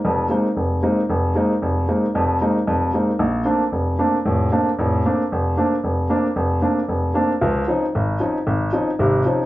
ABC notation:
X:1
M:4/4
L:1/8
Q:"Swing" 1/4=228
K:Bb
V:1 name="Grand piano"
[F,,,F,,]2 [_A,B,CE] z F,,,2 [A,B,CE] z | F,,,2 [_A,B,CE] z F,,,2 [A,B,CE] z | [F,,,F,,]2 [_A,B,CE] z [F,,,F,,]2 [A,B,CE] z | B,,,2 [A,B,CD] z F,,,2 [A,B,CD] z |
[F,,,A,,]2 [A,B,CD] z [F,,,A,,]2 [A,B,CD] z | F,,,2 [A,B,CD] z F,,,2 [A,B,CD] z | F,,,2 [A,B,CD] z F,,,2 [A,B,CD] z | [_D,,F,]2 [F,C_DE] z _A,,,2 [F,CDE] z |
_A,,,2 [F,C_DE] z [A,,,C,]2 [F,CDE] z |]